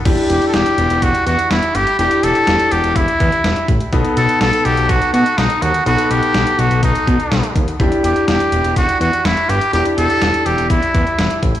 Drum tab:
CC |x---------------|----------------|----------------|----------------|
HH |xxxxxxxxxxxxxxxx|xxxxxxxxxxxxxxxx|xxxxxxxxxxxxxxxx|xxxxxxxxxxxxxxxx|
SD |----o-------o---|----o-------o---|----o-------o---|----o-------o---|
BD |o-------o-------|--------o-o---o-|o-------o-------|--------o-o---o-|

CC |----------------|----------------|
HH |xxxxxxxxxxxxxxxx|xxxxxxxxxxxxxxxx|
SD |----o-------o---|----o-------o---|
BD |o-------o-------|--------o-o---o-|